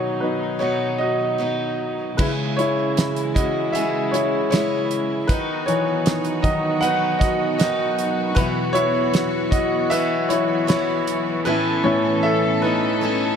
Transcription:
0.00 0.60 B2 medium
0.00 2.16 B2 medium
0.00 2.16 D#3 medium
0.00 0.58 F#3 medium
0.00 2.16 F#3 medium
0.00 0.59 B3 medium
0.00 0.60 D#4 medium
0.00 2.16 D#4 medium
0.00 0.61 F#4 medium
0.00 0.62 F#4 medium
0.00 0.59 C#5 medium
0.00 0.98 D#5 medium
0.20 2.15 B2 soft
0.20 2.15 F#3 soft
0.20 0.58 D#4 soft
0.20 0.61 B4 medium
0.59 1.37 F#3 soft
0.59 1.38 B3 soft
0.59 1.39 D#4 soft
0.59 0.98 F#4 medium
0.59 1.40 F#4 medium
0.59 1.01 C#5 medium
0.98 1.76 F#4 soft
0.98 1.75 D#5 medium
1.38 2.18 F#3 soft
1.38 2.19 B3 soft
1.38 2.19 D#4 soft
1.38 2.20 F#4 soft
2.17 3.36 C#3 medium
2.17 2.71 C#3 soft
2.17 5.26 C#3 medium
2.17 3.36 E3 medium
2.17 5.26 E3 medium
2.17 2.71 G#3 soft
2.17 5.26 G#3 medium
2.17 3.36 G#3 medium
2.17 3.35 C#4 medium
2.17 5.26 E4 medium
2.17 2.28 E4 medium
2.17 3.34 E4 medium
2.17 2.26 B4 medium
2.17 kick loud
2.17 crash medium
2.57 3.33 E4 medium
2.57 3.31 C#5 medium
2.57 closed hi-hat medium
2.97 snare medium
2.97 closed hi-hat medium
3.16 closed hi-hat soft
3.34 3.73 G#3 soft
3.34 3.74 C#4 soft
3.34 3.74 E4 soft
3.34 3.45 F#4 medium
3.34 3.43 D#5 medium
3.34 kick medium
3.34 closed hi-hat medium
3.72 4.49 E3 medium
3.72 4.51 G#3 medium
3.72 4.52 C#4 medium
3.72 4.11 G#4 medium
3.72 4.14 E5 medium
3.72 closed hi-hat medium
3.77 4.53 E4 medium
4.11 4.49 E4 medium
4.11 4.48 C#5 medium
4.11 closed hi-hat medium
4.50 5.27 E3 soft
4.50 5.29 G#3 medium
4.50 5.30 C#4 medium
4.50 5.06 E4 medium
4.50 5.30 E4 medium
4.50 5.05 C#5 medium
4.50 snare medium
4.50 closed hi-hat medium
4.91 closed hi-hat medium
5.27 6.80 D#3 medium
5.27 11.42 F#3 medium
5.27 6.82 B3 medium
5.27 13.36 B3 medium
5.27 5.65 D#4 medium
5.27 8.34 D#4 medium
5.27 6.82 D#4 medium
5.27 11.42 F#4 medium
5.27 5.68 B4 medium
5.27 kick loud
5.27 closed hi-hat medium
5.32 6.84 F#4 medium
5.66 6.40 E3 medium
5.66 6.39 C#5 medium
5.66 closed hi-hat medium
6.06 snare loud
6.06 closed hi-hat medium
6.25 closed hi-hat soft
6.42 8.32 D#3 soft
6.42 8.32 F#3 soft
6.42 8.32 D#4 medium
6.42 6.80 F#4 medium
6.42 6.79 D#5 medium
6.42 kick medium
6.42 closed hi-hat medium
6.81 7.57 D#3 medium
6.81 7.59 B3 medium
6.81 7.59 D#4 medium
6.81 7.61 F#4 medium
6.81 7.19 B4 medium
6.81 7.21 F#5 loud
6.81 closed hi-hat medium
7.19 7.30 F#4 medium
7.19 7.28 D#5 medium
7.19 kick medium
7.19 snare soft
7.19 closed hi-hat medium
7.58 8.36 D#3 medium
7.58 8.37 B3 medium
7.58 8.37 D#4 medium
7.58 8.13 F#4 medium
7.58 8.38 F#4 medium
7.58 8.13 D#5 medium
7.58 snare loud
7.58 closed hi-hat medium
7.99 closed hi-hat medium
8.35 9.90 E2 medium
8.35 9.90 B2 medium
8.35 9.48 E3 medium
8.35 13.36 E3 medium
8.35 9.89 E3 medium
8.35 9.48 F#3 soft
8.35 9.48 B3 medium
8.35 9.91 B3 medium
8.35 8.45 E4 medium
8.35 8.44 B4 medium
8.35 kick loud
8.35 closed hi-hat medium
8.39 9.92 E4 medium
8.39 9.92 F#4 medium
8.73 9.48 E4 medium
8.73 9.53 C#5 loud
8.73 closed hi-hat medium
9.14 snare loud
9.14 closed hi-hat medium
9.51 9.88 F#4 medium
9.51 9.87 D#5 medium
9.51 kick medium
9.51 closed hi-hat medium
9.90 10.67 E3 medium
9.90 10.68 B3 medium
9.90 10.69 E4 medium
9.90 10.69 F#4 medium
9.90 10.27 B4 medium
9.90 10.30 E5 loud
9.90 closed hi-hat medium
10.29 10.66 E4 medium
10.29 10.66 C#5 medium
10.29 closed hi-hat medium
10.67 11.45 E3 medium
10.67 11.46 B3 medium
10.67 11.23 E4 medium
10.67 11.46 E4 medium
10.67 11.47 F#4 medium
10.67 11.22 C#5 medium
10.67 snare loud
10.67 closed hi-hat medium
11.07 closed hi-hat medium
11.45 12.62 A2 medium
11.45 13.01 E3 medium
11.45 12.65 B3 medium
11.45 13.36 C#4 medium
11.45 12.63 C#4 medium
11.45 11.82 E4 medium
11.45 12.62 E4 medium
11.45 13.36 A4 medium
11.45 11.81 B4 medium
11.84 12.36 A2 medium
11.84 12.36 E3 medium
11.84 12.37 C#4 medium
11.84 12.21 E4 medium
11.84 12.24 C#5 medium
12.23 12.33 A4 medium
12.23 12.32 E5 loud
12.62 13.01 B3 soft
12.62 13.02 C#4 soft
12.62 13.36 D#4 medium
12.62 13.01 E4 medium
12.62 13.36 B4 medium
13.01 13.36 E3 medium
13.01 13.36 B3 medium
13.01 13.36 C#4 medium
13.01 13.36 E4 medium

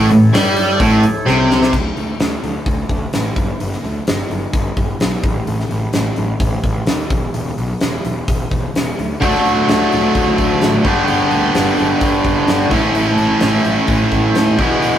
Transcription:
0.00 1.70 E4 medium
0.00 1.70 A4 medium
0.00 1.70 C#5 medium
0.11 0.33 A1 medium
0.11 0.30 A2 medium
0.11 open hi-hat medium
0.33 0.77 G2 medium
0.33 0.79 G3 medium
0.33 snare loud
0.33 open hi-hat medium
0.56 open hi-hat medium
0.79 1.02 A1 medium
0.79 1.02 A2 loud
0.79 kick loud
0.79 open hi-hat medium
1.03 open hi-hat medium
1.26 1.74 C2 medium
1.26 1.72 C3 loud
1.26 snare medium
1.50 snare medium
1.62 snare medium
1.73 1.88 D2 medium
1.73 kick medium
1.73 crash medium
1.97 2.11 D2 medium
1.97 open hi-hat soft
2.19 2.34 D2 medium
2.19 snare loud
2.19 open hi-hat medium
2.43 2.57 D2 medium
2.43 open hi-hat soft
2.66 2.81 D2 medium
2.66 kick medium
2.66 open hi-hat medium
2.89 3.04 D2 medium
2.89 kick medium
2.89 open hi-hat soft
3.13 3.28 A1 medium
3.13 snare medium
3.13 open hi-hat medium
3.36 3.51 G1 medium
3.36 kick medium
3.36 open hi-hat soft
3.60 3.74 G1 medium
3.60 open hi-hat medium
3.73 snare soft
3.84 3.98 D2 medium
3.84 open hi-hat soft
4.07 4.22 G1 medium
4.07 snare medium
4.07 open hi-hat medium
4.30 4.44 G1 medium
4.30 open hi-hat soft
4.53 4.68 G1 medium
4.53 kick medium
4.53 open hi-hat medium
4.77 4.91 G1 medium
4.77 kick medium
4.77 open hi-hat soft
5.00 5.15 B1 medium
5.00 snare medium
5.00 open hi-hat medium
5.24 5.38 A1 medium
5.24 kick medium
5.24 open hi-hat soft
5.47 5.61 A1 medium
5.47 open hi-hat medium
5.60 snare soft
5.71 5.85 A1 medium
5.71 open hi-hat soft
5.93 6.08 A1 medium
5.93 snare loud
5.93 open hi-hat medium
6.16 6.32 A1 medium
6.16 open hi-hat soft
6.40 6.55 A1 medium
6.40 kick medium
6.40 open hi-hat medium
6.64 6.78 A1 medium
6.64 kick medium
6.64 open hi-hat soft
6.87 7.01 D#2 medium
6.87 snare loud
6.87 open hi-hat medium
7.10 7.25 E1 medium
7.10 kick medium
7.10 open hi-hat soft
7.34 7.49 E1 medium
7.34 open hi-hat medium
7.57 7.71 B1 medium
7.57 open hi-hat soft
7.81 7.95 E1 medium
7.81 snare medium
7.81 open hi-hat medium
8.05 8.19 E1 medium
8.05 open hi-hat soft
8.28 8.43 E1 medium
8.28 kick loud
8.28 open hi-hat medium
8.51 8.66 E1 medium
8.51 kick medium
8.51 open hi-hat soft
8.75 8.89 E1 medium
8.75 snare medium
8.75 open hi-hat medium
8.99 9.13 D2 medium
8.99 open hi-hat soft
9.20 9.36 D2 medium
9.20 10.83 D3 medium
9.20 10.83 F#3 medium
9.20 10.84 A3 medium
9.20 10.84 D4 medium
9.20 10.84 F#4 medium
9.20 kick medium
9.20 open hi-hat medium
9.34 snare soft
9.46 9.60 D2 medium
9.46 open hi-hat soft
9.69 9.83 D2 medium
9.69 snare loud
9.69 open hi-hat medium
9.92 10.07 D2 medium
9.92 open hi-hat soft
10.15 10.29 D2 medium
10.15 kick medium
10.15 open hi-hat medium
10.38 10.53 D2 medium
10.38 kick medium
10.38 open hi-hat soft
10.61 10.77 A1 medium
10.61 snare medium
10.61 open hi-hat medium
10.84 10.99 G1 medium
10.84 12.46 G2 medium
10.84 12.47 D3 medium
10.84 12.47 G3 medium
10.84 12.47 B3 medium
10.84 12.48 D4 medium
10.84 12.48 G4 medium
10.84 kick medium
10.84 open hi-hat soft
11.08 11.23 G1 medium
11.08 open hi-hat medium
11.31 11.46 D2 medium
11.31 open hi-hat soft
11.55 11.70 G1 medium
11.55 snare loud
11.55 open hi-hat medium
11.78 11.92 G1 medium
11.78 open hi-hat soft
12.01 12.16 G1 medium
12.01 kick loud
12.01 open hi-hat medium
12.24 12.39 G1 medium
12.24 kick medium
12.24 open hi-hat soft
12.47 12.62 G1 medium
12.47 12.70 G2 medium
12.47 12.70 D3 medium
12.47 12.71 G3 medium
12.47 12.71 B3 medium
12.47 12.71 D4 medium
12.47 12.71 G4 medium
12.47 snare medium
12.47 open hi-hat medium
12.70 12.86 A1 medium
12.70 14.33 A2 medium
12.70 14.35 E3 medium
12.70 14.34 A3 medium
12.70 14.34 C#4 medium
12.70 14.61 E4 medium
12.70 14.35 A4 medium
12.70 kick medium
12.70 open hi-hat soft
12.94 13.09 A1 medium
12.94 open hi-hat medium
13.18 13.32 A1 medium
13.18 open hi-hat soft
13.40 13.56 A1 medium
13.40 snare loud
13.40 open hi-hat medium
13.65 13.79 A1 medium
13.65 open hi-hat soft
13.88 14.02 A1 medium
13.88 kick medium
13.88 open hi-hat medium
14.11 14.26 A1 medium
14.11 kick medium
14.11 open hi-hat soft
14.34 14.50 D#2 medium
14.34 14.57 A2 medium
14.34 14.58 E3 medium
14.34 14.58 A3 medium
14.34 14.58 C#4 medium
14.34 14.58 A4 medium
14.34 snare loud
14.34 open hi-hat medium
14.57 14.73 E1 medium
14.57 14.98 E2 medium
14.57 14.98 B2 medium
14.57 14.98 E3 medium
14.57 14.98 G#3 medium
14.57 14.98 B3 medium
14.57 14.98 E4 loud
14.57 14.98 G#4 medium
14.57 kick medium
14.57 open hi-hat soft
14.82 14.97 E1 medium
14.82 open hi-hat medium

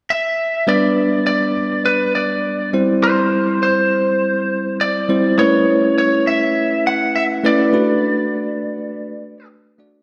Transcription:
0.10 0.70 E5 medium
0.67 1.55 G3 medium
0.67 1.55 B3 medium
0.67 1.55 D4 medium
0.67 1.55 B4 medium
0.67 1.25 D5 medium
1.27 1.85 D5 medium
1.86 2.13 B4 medium
2.15 2.70 D5 medium
2.73 3.68 G3 medium
2.73 3.68 C4 medium
2.73 3.68 E4 medium
2.73 3.69 C5 medium
3.03 3.62 C5 medium
3.63 4.76 C5 medium
4.81 5.38 D5 medium
5.09 5.31 G3 medium
5.09 5.32 C4 medium
5.09 5.32 E4 medium
5.09 5.32 C5 medium
5.38 6.26 A3 medium
5.38 6.26 C#4 medium
5.38 6.26 E4 medium
5.38 6.26 B4 medium
5.38 5.97 C#5 medium
5.98 6.25 C#5 medium
6.27 6.87 E5 medium
6.87 7.15 F#5 medium
7.16 7.23 E5 medium
7.44 7.66 A3 medium
7.44 7.67 C#4 medium
7.44 7.67 E4 medium
7.44 7.67 B4 medium
7.44 9.47 D5 medium
7.73 8.61 A3 medium
7.73 8.61 D4 medium
7.73 8.61 F#4 medium
7.73 8.61 B4 medium
9.79 10.02 A3 medium
9.79 10.02 D4 medium
9.79 10.02 F#4 medium
9.79 10.02 D5 medium

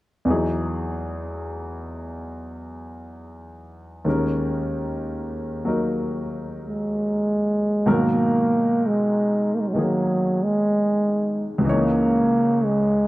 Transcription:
0.25 4.05 E2 soft
0.25 4.06 E3 soft
0.25 4.06 F#3 soft
0.29 4.07 D#4 soft
0.29 4.07 G#4 soft
4.05 7.84 D#2 soft
4.05 7.85 D#3 soft
4.05 7.85 G#3 soft
4.05 7.86 C#4 soft
4.09 5.67 A#4 soft
5.65 7.85 F#3 soft
5.65 7.86 A#3 soft
5.65 7.87 D#4 soft
5.65 7.86 A#4 soft
6.68 7.94 G#3 medium
7.86 11.64 G#2 medium
7.86 11.65 B2 medium
7.86 9.73 D#3 soft
7.86 11.65 F#3 medium
7.86 11.65 A#4 medium
7.92 8.88 A#3 medium
8.87 9.56 G#3 medium
9.55 9.62 A#3 medium
9.61 9.70 G#3 medium
9.68 9.75 F#3 medium
9.73 11.64 D#3 soft
9.73 9.82 E3 medium
9.73 9.75 G#3 medium
9.73 11.65 A#3 soft
9.78 10.45 F#3 medium
9.78 11.66 G#4 soft
10.44 11.49 G#3 medium
11.58 13.07 C#2 medium
11.58 13.07 C#3 soft
11.64 13.07 E3 soft
11.64 13.07 D#4 soft
11.69 12.66 A#3 medium
11.69 13.07 C#5 medium
12.65 13.07 G#3 medium

